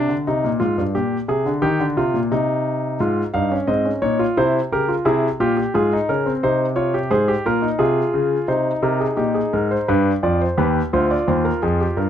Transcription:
grand piano
Already playing: D4
0.09 D3
0.27 C3 D#4
0.44 A#2
0.60 G#2 F4
0.78 G2
0.95 A#2 G4
1.28 C3 G#4
1.46 D3
1.62 D#3 G4
1.80 D3
1.97 C3 F4
2.14 A#2
2.32 C3 D#4
3.00 G#2 F4
3.34 G2 D#4 F5
3.52 C#4
3.67 G#2 C4 D#5
3.85 C#4
4.02 A#2 D#4 C#5
4.19 F4
4.37 C3 E4 C5
4.72 C#3 G4 A#4
4.88 F4
5.05 C3 E4 G#4
5.40 A#2 F4 G4
5.57 G4
5.74 G#2 F4 G#4
5.93 D#4
6.09 C#3 C#4 A#4
6.26 C4
6.43 C3 D#4 C5
6.76 F4 C#5
6.94 G4
7.10 G#2 G#4 C5
7.28 G4
7.46 A#2 F4 A#4
7.62 D#4
7.79 C3 F4 G#4
8.14 C#3
8.48 C3 D#4 C5
8.83 C3 A#4
9.00 G#4
9.17 A#2 D#4 G4
9.34 G#4
9.53 G#2 A#4
9.71 C5
9.88 G2 D4 B4
10.23 F2 F4 D5
10.41 C5
10.57 D#2 G4 B4
10.93 D2 F4 C5
11.11 D5
11.28 D#2 C5
11.45 A#4
11.62 F2 G#4
11.81 G4
11.97 G2 A#4

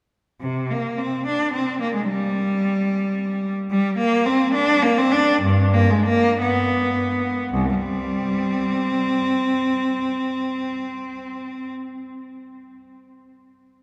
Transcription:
cello
0.41 C3
0.71 A#3
0.98 C4
1.26 D4
1.53 C4
1.81 A#3
1.95 G#3
2.08 G3
3.71 G3
3.98 A#3
4.26 C4
4.54 D4
4.83 A#3
4.98 C4
5.12 D4
5.42 G2
5.74 A#3
5.90 G#3
6.06 A#3
6.41 B3
7.53 C2
7.75 G3 C4

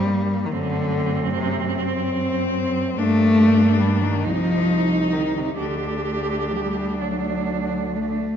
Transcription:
cello
Already playing: G2 G3 A#3 C4
0.11 A#3
0.46 D#3
0.52 F#2 D3 A3 C4
1.35 C3
1.75 C4
2.97 G2 A3 A#3 D4
3.80 G3
4.03 D#3
4.24 C2 F3 D#4
5.13 D#3
5.38 C3
5.59 D2 D3 D4 G4
6.55 G3
7.01 F#3 D4
7.96 A3

